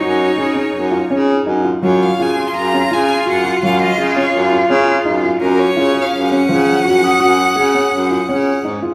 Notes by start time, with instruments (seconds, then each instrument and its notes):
Already playing: cello D#4, violin C#5
0.01 baritone saxophone F#2, felt piano F#4
0.37 baritone saxophone C#3, felt piano G#4
0.55 felt piano C#4
0.74 baritone saxophone F#2
0.91 felt piano F4
1.10 baritone saxophone C#3, felt piano C#4
1.46 baritone saxophone F#2, felt piano D#4
1.64 felt piano F4
1.82 baritone saxophone F#2, felt piano F#3, cello F4, violin C#5
2.03 violin F5
2.18 baritone saxophone C#3, felt piano F4
2.22 violin G#5
2.37 felt piano G#4, glockenspiel C6
2.48 violin C6
2.53 baritone saxophone F#2, violin A#5
2.74 felt piano C#4
2.90 baritone saxophone C#3, felt piano F4, violin G#5
3.25 baritone saxophone F#2, felt piano F#4
3.30 violin F#5
3.45 felt piano F#4
3.61 baritone saxophone F#2, felt piano F#3, violin F5
3.82 violin D#5
3.98 baritone saxophone C#3, felt piano G#4
4.16 felt piano C#4, violin C#5
4.34 baritone saxophone F#2
4.52 felt piano F4
4.70 baritone saxophone C#3, felt piano C#4
5.05 baritone saxophone F#2, felt piano D#4
5.24 felt piano F4
5.40 baritone saxophone F#2, cello C#4, felt piano F#4, violin A#4
5.59 violin C#5
5.76 baritone saxophone C#3, felt piano F4
5.94 felt piano G#4
6.02 violin F5
6.12 baritone saxophone F#2
6.29 felt piano C#4, violin F#5
6.49 baritone saxophone C#3, felt piano F3
6.85 baritone saxophone F#2, felt piano F#4
7.02 felt piano F#4, glockenspiel D#6
7.20 baritone saxophone F#2, felt piano F#4
7.56 baritone saxophone C#3, felt piano G#4
7.74 felt piano C#4
7.93 baritone saxophone F#2
8.11 felt piano F4
8.29 baritone saxophone C#3, felt piano C#4
8.64 baritone saxophone G#2, felt piano D#4
8.83 felt piano F4